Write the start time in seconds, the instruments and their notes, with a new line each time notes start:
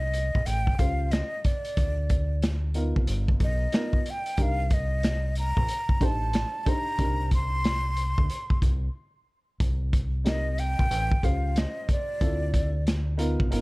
Already playing: fingered electric bass C2, flute D#5
0.14 closed hi-hat
0.35 fingered electric bass A#1, kick
0.46 fingered electric bass A1, flute G5, closed hi-hat
0.67 kick
0.79 fingered electric bass C#2, upright piano C#4 F4 G4 C5, flute F5, kick, closed hi-hat
1.11 flute D#5, snare, closed hi-hat
1.44 flute D5, kick, closed hi-hat
1.65 closed hi-hat
1.77 fingered electric bass D2, kick, closed hi-hat
2.10 kick, closed hi-hat
2.42 snare, closed hi-hat
2.74 upright piano B3 D#4 F4 A#4, closed hi-hat
2.96 fingered electric bass C2, kick
3.07 fingered electric bass G1, closed hi-hat
3.28 kick
3.40 fingered electric bass B1, flute D#5, kick, closed hi-hat
3.72 upright piano B3 D#4 F4 A#4, snare, closed hi-hat
3.93 kick
4.06 closed hi-hat
4.10 flute G5
4.26 closed hi-hat
4.37 fingered electric bass C2, upright piano D4 D#4 G4 A#4, flute G5, kick, closed hi-hat
4.42 flute F5
4.70 flute D#5, kick, closed hi-hat
5.03 snare, closed hi-hat
5.35 flute A#5, closed hi-hat
5.57 fingered electric bass A#1, kick
5.68 closed hi-hat
5.89 kick
6.00 fingered electric bass A1, upright piano D4 D#4 G4 C5, kick, closed hi-hat
6.05 flute A5
6.33 snare, closed hi-hat
6.63 upright piano D4 D#4 G4 C5, flute A5, kick, closed hi-hat
6.69 flute A#5
6.98 fingered electric bass C2, upright piano D4 D#4 G4 A#4, kick, closed hi-hat
7.31 flute C6, kick, closed hi-hat
7.64 snare, closed hi-hat
7.97 closed hi-hat
8.18 fingered electric bass D2, kick
8.30 closed hi-hat
8.50 kick
8.62 fingered electric bass C2, kick, closed hi-hat
9.60 fingered electric bass C2, kick, closed hi-hat
9.93 kick, closed hi-hat
10.24 upright piano C4 D#4 G4 A#4, flute D#5, snare, closed hi-hat
10.58 flute G5, closed hi-hat
10.79 fingered electric bass A#1, kick
10.91 fingered electric bass A1, closed hi-hat
11.12 kick
11.22 fingered electric bass C#2, upright piano C#4 F4 G4 C5, flute F5, kick, closed hi-hat
11.56 flute D#5, snare, closed hi-hat
11.89 flute D5, kick, closed hi-hat
12.20 fingered electric bass D2, upright piano C4 E4 F4 A4, kick, closed hi-hat
12.54 kick, closed hi-hat
12.87 snare, closed hi-hat
13.17 upright piano B3 D#4 F4 A#4, closed hi-hat
13.40 fingered electric bass C2, kick
13.50 fingered electric bass G1, upright piano B3 D#4 F4 A#4, closed hi-hat